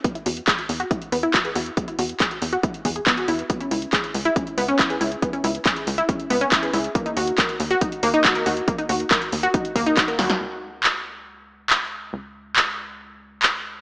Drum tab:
HH |xxoxxxoxxxoxxxox|xxoxxxoxxxoxxxox|xxoxxxoxxxoxxxox|xxoxxxoxxxoxxxox|
CP |----x-------x---|----x-------x---|----x-------x---|----x-------x---|
SD |----------------|----------------|----------------|----------------|
BD |o---o---o---o---|o---o---o-o-o---|o---o---o---o---|o---o---o---o---|

HH |xxoxxxoxxxoxxxox|xxoxxxoxxxoxxxox|----------------|----------------|
CP |----x-------x---|----x-------x---|----x-------x---|----x-------x---|
SD |----------------|--------------oo|----------------|----------------|
BD |o---o---o---o---|o---o---o-o-o---|----------------|----------------|